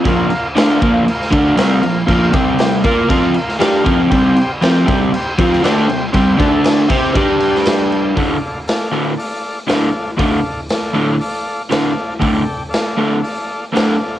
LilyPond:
<<
  \new Staff \with { instrumentName = "Transistor combo organ" } { \time 4/4 \key d \minor \tempo 4 = 118 << { r1 | r1 | r1 | r2. g''8 a''8 |
r1 | r1 | r1 | } \\ { <f' bes' f''>4 <f' bes' f''>4 <f' bes' f''>8 <f' bes' f''>8 <f' bes' f''>4 | <f' bes' f''>8 <g' c'' g''>4 <f' bes' f''>4 <f' bes' f''>8 <f' bes' f''>4 | <g' c'' g''>4 <g' c'' g''>4 <g' c'' g''>8 <g' c'' g''>8 <g' c'' g''>4 | <g' c'' g''>8 <a' d'' a''>4 <g' c'' g''>8 <g' d'' g''>8 <g' d'' g''>8 <g' d''>4 |
<a' d'' f''>4 <a' d'' f''>4 <a' d'' f''>4 <a' d'' f''>4 | <a' d'' f''>4 <a' d'' f''>4 <a' d'' f''>4 <a' d'' f''>4 | <a' d'' g''>4 <a' d'' f''>4 <a' d'' f''>4 <a' d'' f''>4 | } >> }
  \new Staff \with { instrumentName = "Overdriven electric guitar" } { \clef bass \time 4/4 \key d \minor <bes, f bes>8 r8 <d a d'>8 <bes, f bes>8 r8 <d a d'>8 <c g c'>8 <bes, f>8 | <bes, f bes>8 <c g c'>4 <bes f' bes'>8 <f c' f'>8 r8 <g d' g'>8 <f c' f'>8 | <c g c'>8 r8 <f c' f'>8 <c g c'>8 r8 <f c' f'>8 <d a d'>8 <c g>8 | <c g c'>8 <d a d'>4 <c' g' c''>8 <g d' g'>2 |
<d, a, d>8 r4 <d, a, d>8 r4 <d, a, d>8 r8 | <d, a, d>8 r4 <d, a, d>8 r4 <d, a, d>8 r8 | <d, a, d>8 r4 <d, a, d>8 r4 <d, a, d>8 r8 | }
  \new DrumStaff \with { instrumentName = "Drums" } \drummode { \time 4/4 <cymc bd>8 cymc8 <cymc sn>8 <cymc bd>8 cymc16 sn16 <cymc bd>8 <cymc sn>8 cymc8 | <cymc bd>8 <cymc bd>8 <cymc sn>8 <cymc bd>8 <cymc bd>8 cymc16 sn16 <cymc sn>8 <cymc bd>8 | <cymc bd>8 cymc8 <cymc sn>8 <cymc bd>8 cymc8 <cymc bd>16 sn16 <cymc sn>8 cymc8 | <cymc bd>8 <cymc bd>8 <cymc sn>8 <cymc bd>8 <cymc bd>8 cymc16 sn16 <cymc sn>8 cymc8 |
<hho bd>4 <hho sn>4 hho4 <hho sn>4 | <hho bd>4 <hho sn>4 hho4 <hho sn>4 | <hho bd>4 <hho sn>4 hho4 <hho sn>4 | }
>>